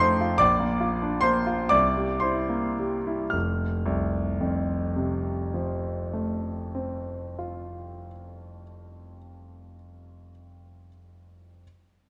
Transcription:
grand piano
Already playing: F2 D#4 F4 D5 D6
0.00 A3 C5 C6
0.21 F4
0.38 A#1 D5 D6
0.60 A#3
0.81 F4
1.02 D4
1.21 A#3 C5 C6
1.47 F4
1.69 C2 D5 D6
1.97 G3
2.20 E4 C5 C6
2.49 A#3
2.79 G3
3.07 E4
3.30 F1 F6
3.86 C2
4.41 F2
4.96 C3
5.54 F3
6.13 A3
6.75 C4
7.39 F4

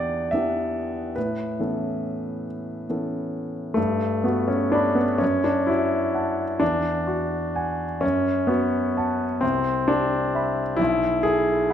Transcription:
grand piano
Already playing: E2 E3 B3 D4 G4 D5 F#5 G5
0.31 E3 B3 D4 G4 E5
1.16 A2 B4
1.59 E3 B3 C#4 A4
2.89 E3 B3 C#4 A4
3.74 G2 A3
4.24 B3 F#4
4.48 C#4
4.72 D4 D5 B5
4.95 B3
5.18 F#2 C#4
5.44 D4
5.67 E4 F#4
6.14 F#5 A5
6.60 E2 D4
7.07 F#4
7.56 F#5 G#5
8.01 F#2 C#4
8.47 B3 F#4
8.97 F#5 A5
9.41 C2 C4
9.88 D4 G4
10.35 E5 B5
10.76 B1 E4
11.23 G#4 A4
11.70 F#5

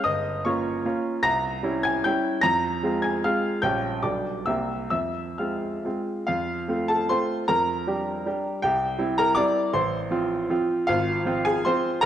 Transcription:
grand piano
0.04 G1 D#5 D#6
0.45 A#3 C#4 F4 C#5 C#6
0.85 A#3 C#4 F4
1.23 C2 A#5 A#6
1.63 G3 C#4 E4
1.83 G#5 G#6
2.04 G3 C#4 E4 G5 G6
2.41 F2 A#5 A#6
2.83 G#3 C4 F4
3.02 G#5 G#6
3.24 G#3 C4 F4 F5 F6
3.62 A#1 G3 C#4 G4 G5 G6
4.03 B1 G3 D4 G4 D5 D6
4.46 C2 A#3 C4 G4 E5 E6
4.90 F2 E5 E6
5.38 G#3 C4 F4 F5 F6
5.85 G#3 C4 F4
6.27 F2 F4 F5
6.68 A3 C4 F4
6.88 A4 A5
7.09 A3 C4 F4 C5 C6
7.48 F2 A#4 A#5
7.87 G3 D4 G4
8.26 G3 D4 G4
8.62 C2 G4 G5
8.98 G3 C4 E4
9.18 A#4 A#5
9.35 G3 C4 E4 D5 D6
9.73 A1 C5 C6
10.11 F3 C4 F4
10.50 F3 C4 F4
10.87 G#1 F4 F5
11.25 F3 C4 F4
11.45 G#4 G#5
11.65 F3 C4 F4 C5 C6
12.01 A#4 A#5

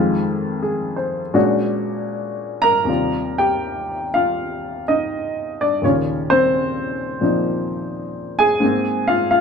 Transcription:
upright piano
Already playing: F2 D#3 G#3 F4
0.62 G#4
0.96 C5
1.34 A#2 G#3 C#4 D4 F#4
2.62 A#4 A#5
2.85 D#2 C3 G3
2.89 F4
3.38 G4 G5
4.14 F4 F5
4.88 D#4 D#5
5.61 D4 D5
5.81 D#2 A#2 C#3 D#3 C#4 F4 C#5
6.30 C4 C5
7.21 A#2 F3 A#3 C4 D#4
8.39 G#4 G#5
8.60 G#2 G#3 A#3
8.65 C4
9.08 F4 F5
9.31 F4 F5

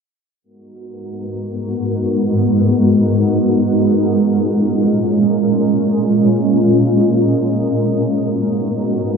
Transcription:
ambient pad
0.44 G#2 G#3 B3 F#4 A#4
4.13 A#2 C#4 F4
7.82 G#2 B3 F#4

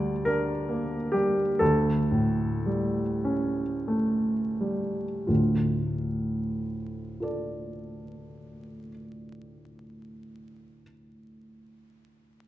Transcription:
grand piano
Already playing: D2 D3 G3 D5
0.25 D4 A#4
0.69 A#3
1.12 G3 G4
1.59 D2 A4
2.11 A2
2.66 G3
3.24 C#4
3.88 A3
4.60 G3
5.27 D2 A2 F4
7.20 F4 A4 D5

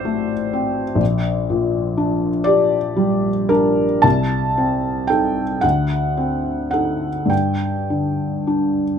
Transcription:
felt piano
Already playing: A1 A2 C4 F#4 C5 D5 E5
0.05 A3
0.53 C4
0.95 A#1
1.50 A#2
1.97 D4
2.44 G4 D5
2.96 G3
3.49 D4 A#4
4.02 C2 A5
4.58 C4
5.07 D#4 A4 G5
5.61 D2 F#5
6.17 C4
6.71 D#4 A4 F#5
7.26 G2
7.30 G5
7.90 D3
8.47 D4

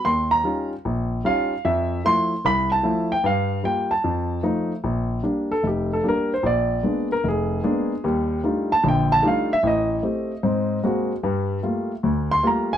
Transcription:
grand piano
0.05 D#2 C6
0.31 A#5
0.44 G3 C#4 D#4 F4
0.85 A#1
1.24 G3 C#4 D#4 F4 F5
1.65 F2 E5
2.05 F3 A3 E4 C6
2.45 C2 B5
2.72 A5
2.83 F3 A3 E4
3.12 G5
3.24 G2 F5
3.63 G3 A#3 F4 G5
3.91 A5
4.04 F2
4.43 F3 A3 D#4
4.84 A#1
5.23 G3 A#3 D4
5.51 A4
5.63 F1 G4
5.93 A4
6.03 G3 A#3 D4
6.08 A#4
6.34 C5
6.43 A#1 D5
6.83 G#3 A#3 B3 D4
7.12 A#4
7.24 F1
7.28 G#4
7.63 G#3 A#3 B3 D4
8.04 D#2 G3
8.43 G3 A3 D4 D#4 F4
8.72 A5
8.83 A#1 D3
8.88 G5
9.12 A5
9.22 G3 A3 D4 D#4 F4
9.27 F5
9.53 E5
9.63 A1
9.67 D#5
10.03 A3 C4 G4
10.43 G#2 C4
10.84 G#3 A#3 C4 F#4
11.23 G2 G3
11.63 G3 A3 A#3 F4
12.03 D2
12.31 C6
12.43 G3 A3 A#3 F4 A#5
12.73 G#5

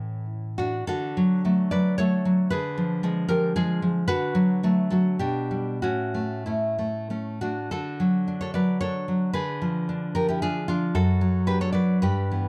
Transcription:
nylon-string guitar
Already playing: A2 E3 C#4 E4 A4
0.58 D4 F#4
0.87 D3 F#4 A4
1.17 F#3
1.45 F#3 A3
1.71 F#3 B4 D5
1.98 F#3 A3 A4 C#5
2.25 F#3
2.50 D3 G#4 B4
2.78 F3
3.03 F3 G#3
3.29 F3 G4 A#4
3.56 F3 G#3 F4 G#4
3.82 F3
4.08 D3 F#4 B4
4.35 F#3
4.63 F#3 A3
4.90 F#3 F#4 A4
5.19 B2 D4 G4
5.51 G3
5.82 A2 C#4 F#4
6.15 A3
6.46 A3 C#4 E4
6.79 A3
7.10 A3 C#4
7.41 A3 D4 F#4
7.71 D3 F#4 A4
8.00 F#3
8.28 D4
8.41 A4 C#5
8.54 F#3 B4 D5
8.81 D4 A4 C#5
9.08 F#3
9.33 D3 G#4 B4
9.62 F3
9.89 D4
10.15 F3 G4 A#4
10.29 E4 G4
10.42 D4 F4 G#4
10.68 F3 D4 F4
10.95 F#2 F#4 A4
11.21 F#3
11.47 D4 G4 B4
11.61 A4 C#5
11.72 F#3 B4 D5
12.02 G2 G4 B4
12.31 E3 B3

